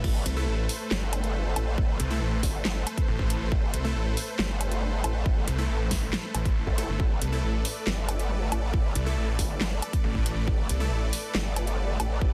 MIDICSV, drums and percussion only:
0, 0, Header, 1, 2, 480
1, 0, Start_track
1, 0, Key_signature, 0, "minor"
1, 0, Tempo, 434783
1, 45, Time_signature, 4, 2, 24, 8
1, 13613, End_track
2, 0, Start_track
2, 0, Title_t, "Drums"
2, 45, Note_on_c, 9, 36, 114
2, 45, Note_on_c, 9, 49, 78
2, 156, Note_off_c, 9, 36, 0
2, 156, Note_off_c, 9, 49, 0
2, 285, Note_on_c, 9, 42, 84
2, 396, Note_off_c, 9, 42, 0
2, 765, Note_on_c, 9, 46, 100
2, 875, Note_off_c, 9, 46, 0
2, 1005, Note_on_c, 9, 38, 126
2, 1005, Note_on_c, 9, 39, 94
2, 1116, Note_off_c, 9, 38, 0
2, 1116, Note_off_c, 9, 39, 0
2, 1246, Note_on_c, 9, 42, 86
2, 1246, Note_on_c, 9, 77, 54
2, 1356, Note_off_c, 9, 42, 0
2, 1356, Note_off_c, 9, 77, 0
2, 1366, Note_on_c, 9, 42, 37
2, 1476, Note_off_c, 9, 42, 0
2, 1725, Note_on_c, 9, 42, 87
2, 1725, Note_on_c, 9, 77, 79
2, 1835, Note_off_c, 9, 42, 0
2, 1835, Note_off_c, 9, 77, 0
2, 1965, Note_on_c, 9, 36, 123
2, 2075, Note_off_c, 9, 36, 0
2, 2205, Note_on_c, 9, 42, 78
2, 2316, Note_off_c, 9, 42, 0
2, 2684, Note_on_c, 9, 36, 63
2, 2685, Note_on_c, 9, 46, 95
2, 2795, Note_off_c, 9, 36, 0
2, 2795, Note_off_c, 9, 46, 0
2, 2925, Note_on_c, 9, 38, 125
2, 2925, Note_on_c, 9, 39, 96
2, 3035, Note_off_c, 9, 38, 0
2, 3035, Note_off_c, 9, 39, 0
2, 3165, Note_on_c, 9, 42, 85
2, 3165, Note_on_c, 9, 77, 52
2, 3276, Note_off_c, 9, 42, 0
2, 3276, Note_off_c, 9, 77, 0
2, 3285, Note_on_c, 9, 36, 110
2, 3286, Note_on_c, 9, 42, 38
2, 3395, Note_off_c, 9, 36, 0
2, 3397, Note_off_c, 9, 42, 0
2, 3524, Note_on_c, 9, 36, 68
2, 3635, Note_off_c, 9, 36, 0
2, 3645, Note_on_c, 9, 42, 84
2, 3755, Note_off_c, 9, 42, 0
2, 3884, Note_on_c, 9, 36, 120
2, 3994, Note_off_c, 9, 36, 0
2, 4125, Note_on_c, 9, 42, 80
2, 4236, Note_off_c, 9, 42, 0
2, 4605, Note_on_c, 9, 46, 95
2, 4716, Note_off_c, 9, 46, 0
2, 4845, Note_on_c, 9, 38, 125
2, 4845, Note_on_c, 9, 39, 89
2, 4956, Note_off_c, 9, 38, 0
2, 4956, Note_off_c, 9, 39, 0
2, 5086, Note_on_c, 9, 42, 79
2, 5086, Note_on_c, 9, 77, 53
2, 5196, Note_off_c, 9, 42, 0
2, 5196, Note_off_c, 9, 77, 0
2, 5206, Note_on_c, 9, 42, 36
2, 5316, Note_off_c, 9, 42, 0
2, 5566, Note_on_c, 9, 42, 78
2, 5566, Note_on_c, 9, 77, 80
2, 5676, Note_off_c, 9, 42, 0
2, 5676, Note_off_c, 9, 77, 0
2, 5804, Note_on_c, 9, 36, 126
2, 5915, Note_off_c, 9, 36, 0
2, 6045, Note_on_c, 9, 42, 76
2, 6156, Note_off_c, 9, 42, 0
2, 6525, Note_on_c, 9, 36, 64
2, 6525, Note_on_c, 9, 38, 72
2, 6525, Note_on_c, 9, 46, 97
2, 6635, Note_off_c, 9, 36, 0
2, 6636, Note_off_c, 9, 38, 0
2, 6636, Note_off_c, 9, 46, 0
2, 6766, Note_on_c, 9, 38, 126
2, 6766, Note_on_c, 9, 39, 91
2, 6876, Note_off_c, 9, 38, 0
2, 6876, Note_off_c, 9, 39, 0
2, 7006, Note_on_c, 9, 42, 80
2, 7006, Note_on_c, 9, 77, 56
2, 7116, Note_off_c, 9, 42, 0
2, 7116, Note_off_c, 9, 77, 0
2, 7125, Note_on_c, 9, 36, 113
2, 7127, Note_on_c, 9, 42, 33
2, 7236, Note_off_c, 9, 36, 0
2, 7237, Note_off_c, 9, 42, 0
2, 7366, Note_on_c, 9, 36, 63
2, 7476, Note_off_c, 9, 36, 0
2, 7486, Note_on_c, 9, 42, 77
2, 7596, Note_off_c, 9, 42, 0
2, 7725, Note_on_c, 9, 36, 124
2, 7836, Note_off_c, 9, 36, 0
2, 7966, Note_on_c, 9, 42, 76
2, 8076, Note_off_c, 9, 42, 0
2, 8445, Note_on_c, 9, 46, 98
2, 8556, Note_off_c, 9, 46, 0
2, 8686, Note_on_c, 9, 38, 126
2, 8686, Note_on_c, 9, 39, 89
2, 8796, Note_off_c, 9, 38, 0
2, 8796, Note_off_c, 9, 39, 0
2, 8927, Note_on_c, 9, 42, 83
2, 8927, Note_on_c, 9, 77, 57
2, 9037, Note_off_c, 9, 42, 0
2, 9037, Note_off_c, 9, 77, 0
2, 9047, Note_on_c, 9, 42, 34
2, 9157, Note_off_c, 9, 42, 0
2, 9406, Note_on_c, 9, 42, 77
2, 9406, Note_on_c, 9, 77, 89
2, 9517, Note_off_c, 9, 42, 0
2, 9517, Note_off_c, 9, 77, 0
2, 9645, Note_on_c, 9, 36, 115
2, 9755, Note_off_c, 9, 36, 0
2, 9886, Note_on_c, 9, 42, 82
2, 9996, Note_off_c, 9, 42, 0
2, 10365, Note_on_c, 9, 36, 60
2, 10366, Note_on_c, 9, 46, 106
2, 10475, Note_off_c, 9, 36, 0
2, 10477, Note_off_c, 9, 46, 0
2, 10606, Note_on_c, 9, 38, 120
2, 10606, Note_on_c, 9, 39, 84
2, 10716, Note_off_c, 9, 38, 0
2, 10716, Note_off_c, 9, 39, 0
2, 10846, Note_on_c, 9, 42, 84
2, 10846, Note_on_c, 9, 77, 55
2, 10956, Note_off_c, 9, 42, 0
2, 10956, Note_off_c, 9, 77, 0
2, 10965, Note_on_c, 9, 36, 108
2, 10967, Note_on_c, 9, 42, 36
2, 11076, Note_off_c, 9, 36, 0
2, 11077, Note_off_c, 9, 42, 0
2, 11205, Note_on_c, 9, 36, 62
2, 11316, Note_off_c, 9, 36, 0
2, 11326, Note_on_c, 9, 42, 83
2, 11437, Note_off_c, 9, 42, 0
2, 11565, Note_on_c, 9, 36, 110
2, 11675, Note_off_c, 9, 36, 0
2, 11806, Note_on_c, 9, 42, 83
2, 11917, Note_off_c, 9, 42, 0
2, 12287, Note_on_c, 9, 46, 107
2, 12397, Note_off_c, 9, 46, 0
2, 12526, Note_on_c, 9, 38, 117
2, 12526, Note_on_c, 9, 39, 89
2, 12637, Note_off_c, 9, 38, 0
2, 12637, Note_off_c, 9, 39, 0
2, 12767, Note_on_c, 9, 42, 84
2, 12767, Note_on_c, 9, 77, 53
2, 12877, Note_off_c, 9, 42, 0
2, 12877, Note_off_c, 9, 77, 0
2, 12887, Note_on_c, 9, 42, 37
2, 12997, Note_off_c, 9, 42, 0
2, 13246, Note_on_c, 9, 42, 85
2, 13246, Note_on_c, 9, 77, 89
2, 13357, Note_off_c, 9, 42, 0
2, 13357, Note_off_c, 9, 77, 0
2, 13485, Note_on_c, 9, 36, 114
2, 13595, Note_off_c, 9, 36, 0
2, 13613, End_track
0, 0, End_of_file